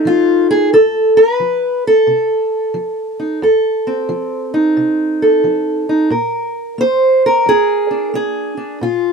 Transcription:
0.00 1.20 A3 soft
0.00 0.73 D#4 medium
0.05 0.68 F3 soft
0.05 0.50 F4 medium
0.51 0.73 G#4 medium
0.73 1.35 F2 medium
0.73 1.17 A4 medium
1.17 1.84 B4 medium
1.40 2.02 F3 medium
1.87 3.42 A4 medium
2.07 2.69 C3 medium
2.74 3.37 F3 medium
3.19 3.39 D#4 soft
3.42 4.04 F2 medium
3.42 5.21 A4 medium
3.87 6.09 C4 medium
4.09 4.71 F3 medium
4.54 5.88 D#4 medium
4.77 5.39 C3 medium
5.22 6.09 A4 medium
5.44 6.06 F3 soft
5.89 6.09 D#4 soft
6.10 6.73 A#2 medium
6.10 6.80 A#4 soft
6.78 7.41 A#3 medium
6.78 7.24 C5 loud
7.26 8.15 A#4 medium
7.46 8.09 F2 medium
7.46 8.14 G#4 medium
7.91 8.56 D4 soft
8.14 8.76 A#3 medium
8.14 9.13 G#4 medium
8.57 8.78 D4 soft
8.81 9.13 A#2 medium
8.81 9.13 F4 medium

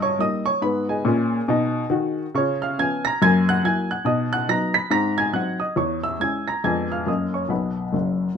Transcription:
0.00 0.11 G2 medium
0.00 0.18 C#5 medium
0.00 0.21 D#5 medium
0.00 0.19 C#6 medium
0.00 0.21 D#6 loud
0.19 0.42 G3 medium
0.19 0.43 A#3 medium
0.19 0.43 D#4 soft
0.19 0.44 D#5 medium
0.19 0.46 D#6 medium
0.46 0.61 C#5 medium
0.46 0.62 C#6 medium
0.62 0.96 G#2 medium
0.62 0.97 B3 medium
0.62 0.87 B4 medium
0.62 0.88 B5 medium
0.89 2.14 G#4 medium
0.89 2.14 D#5 medium
0.89 2.18 G#5 medium
1.05 1.39 A#2 medium
1.05 1.41 C#4 medium
1.48 1.82 B2 loud
1.48 1.83 D#4 medium
1.90 2.25 D#3 medium
1.90 2.25 F#4 medium
2.35 2.71 C#3 medium
2.35 2.60 F4 soft
2.35 2.60 C#5 medium
2.35 2.61 C#6 medium
2.62 2.77 F5 medium
2.62 2.78 F6 medium
2.79 3.02 F3 soft
2.79 3.02 B3 medium
2.79 3.02 C#4 medium
2.79 3.04 G#5 medium
2.79 3.05 G#6 medium
3.05 3.21 A#5 medium
3.05 3.21 A#6 loud
3.22 3.58 F#2 loud
3.22 3.46 A#3 medium
3.22 3.47 G#5 medium
3.22 3.48 G#6 loud
3.49 3.64 F#5 medium
3.49 3.64 F#6 loud
3.64 3.87 F#3 medium
3.64 3.88 A#3 soft
3.64 3.88 E4 medium
3.64 3.89 G#5 medium
3.64 3.91 G#6 medium
3.91 4.06 F#5 medium
3.91 4.07 F#6 medium
4.05 4.42 B2 medium
4.05 4.30 D#4 medium
4.05 4.31 D#5 medium
4.05 4.32 D#6 medium
4.33 4.49 F#5 medium
4.33 4.49 F#6 loud
4.49 4.72 F#3 medium
4.49 4.73 B3 soft
4.49 4.73 D#4 medium
4.49 4.75 A#5 medium
4.49 4.76 A#6 loud
4.74 4.91 B5 medium
4.74 4.92 B6 medium
4.90 5.28 G#2 medium
4.90 5.16 C4 medium
4.90 5.17 A#5 medium
4.90 5.18 A#6 loud
5.18 5.34 G#5 medium
5.18 5.35 G#6 loud
5.33 5.57 F#3 soft
5.33 5.57 C4 soft
5.33 5.58 D#4 soft
5.33 5.60 F#5 medium
5.33 5.61 F#6 medium
5.60 5.77 D#5 medium
5.60 5.77 D#6 medium
5.76 6.14 E2 medium
5.76 6.03 C#5 medium
5.76 6.04 C#6 medium
6.04 6.20 E5 medium
6.04 6.21 E6 medium
6.20 6.44 G#3 soft
6.20 6.44 C#4 medium
6.20 6.45 E4 soft
6.20 6.46 G#5 medium
6.20 6.48 G#6 medium
6.48 6.64 A#5 medium
6.48 6.64 A#6 medium
6.64 7.01 F2 medium
6.64 6.89 G#3 medium
6.64 6.88 B3 medium
6.64 6.88 D4 soft
6.64 6.90 G#5 medium
6.64 6.91 G#6 medium
6.92 7.07 F5 medium
6.92 7.08 F6 medium
7.07 7.44 F#2 medium
7.07 7.31 F#3 soft
7.07 7.32 A#3 soft
7.07 7.32 C#4 soft
7.07 7.33 D#5 soft
7.07 7.34 D#6 medium
7.34 7.50 C#5 soft
7.34 7.51 C#6 medium
7.49 7.84 B1 medium
7.49 7.84 B2 medium
7.49 8.37 B4 soft
7.49 8.37 F#5 soft
7.49 8.37 B5 medium
7.93 8.28 F#1 medium
7.93 8.28 F#2 medium

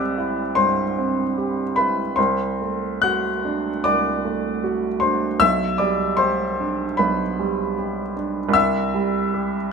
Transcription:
0.00 0.53 C2 medium
0.00 0.98 C4 medium
0.00 0.42 G4 medium
0.00 0.53 D5 medium
0.00 2.19 E5 medium
0.00 2.19 F#5 medium
0.00 0.56 D6 medium
0.00 2.20 E6 medium
0.00 2.19 F#6 loud
0.18 0.81 E4 soft
0.55 1.22 G2 medium
0.55 1.73 C5 medium
0.55 1.76 C6 medium
0.98 1.62 C4 medium
1.38 2.01 G4 medium
1.76 2.18 E4 soft
1.76 2.15 B4 medium
1.76 2.17 B5 medium
2.16 3.81 C2 medium
2.16 3.00 C5 medium
2.16 3.03 C6 medium
2.62 3.29 A3 soft
3.02 3.69 F#4 medium
3.02 3.80 F#5 medium
3.02 3.84 F#6 medium
3.45 4.08 D4 medium
3.84 5.38 C2 medium
3.84 4.98 D5 medium
3.84 5.02 D6 medium
4.25 4.87 A3 medium
4.64 5.26 F#4 medium
5.00 5.41 D4 soft
5.00 5.38 C5 medium
5.00 5.40 C6 medium
5.40 6.95 B1 medium
5.40 5.77 E5 medium
5.40 5.80 E6 loud
5.78 6.43 G3 soft
5.78 6.17 D5 medium
5.78 6.19 D6 medium
6.17 6.83 G4 medium
6.17 6.94 C5 medium
6.17 6.97 C6 medium
6.60 7.23 D4 medium
6.97 8.51 B1 medium
6.97 8.12 B4 medium
6.97 8.15 B5 medium
7.39 8.01 G3 medium
7.78 8.40 G4 medium
8.16 8.55 D4 soft
8.49 9.72 C2 medium
8.53 9.68 E5 medium
8.53 9.72 E6 loud
8.94 9.57 G3 medium
9.34 9.72 G4 medium

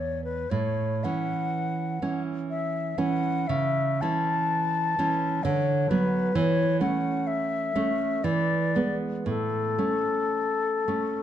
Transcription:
0.00 0.44 E2 soft
0.00 0.45 G#3 soft
0.00 0.46 B3 soft
0.00 0.24 C#5 soft
0.24 0.52 B4 soft
0.50 1.03 A2 soft
0.50 1.05 C#5 medium
1.04 1.99 E3 soft
1.04 1.99 C#4 soft
1.04 2.22 F#5 medium
2.02 2.94 E3 soft
2.02 2.94 C#4 soft
2.50 2.99 E5 soft
2.98 3.45 E3 soft
2.98 3.45 C#4 soft
2.98 3.49 F#5 medium
3.48 4.00 C#3 soft
3.48 4.03 E5 medium
4.01 4.94 E3 soft
4.01 4.94 C#4 soft
4.01 5.45 A5 medium
4.99 5.40 E3 soft
4.99 5.41 C#4 soft
5.43 5.89 D3 medium
5.43 5.91 C#5 medium
5.90 6.32 F#3 soft
5.90 6.32 B3 soft
5.90 6.37 B4 medium
6.35 6.80 E3 medium
6.35 6.81 C#5 medium
6.81 7.71 A3 soft
6.81 7.71 C#4 soft
6.81 7.28 F#5 medium
7.27 8.25 E5 medium
7.76 8.21 A3 soft
7.76 8.21 C#4 soft
8.24 8.74 E3 soft
8.24 8.96 D5 medium
8.75 9.23 G#3 soft
8.75 9.23 B3 soft
9.26 9.77 A2 soft
9.26 11.23 A4 medium
9.78 10.84 A3 soft
9.78 10.84 C#4 soft
10.88 11.23 A3 soft
10.88 11.23 C#4 soft

